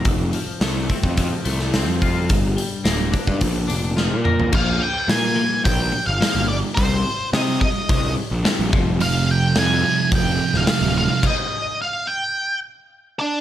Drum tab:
CC |----------------|----------------|x---------------|----------------|
HH |o-o-o-o-o-o-o-o-|o-o-o-o-o-o-----|----o---o---o---|o---o---o---o---|
SD |----o------oo---|----o-------o---|----o-------o---|----o-------o---|
T2 |----------------|--------------o-|----------------|----------------|
FT |----------------|---------------o|----------------|----------------|
BD |o-----ooo-----o-|o-----ooo-------|o-------o-------|o-----o-o-----o-|

CC |----------------|x---------------|
HH |o---o---o---o---|----------------|
SD |----o------ooo--|----------------|
T2 |----------------|----------------|
FT |----------------|----------------|
BD |--------o-------|o---------------|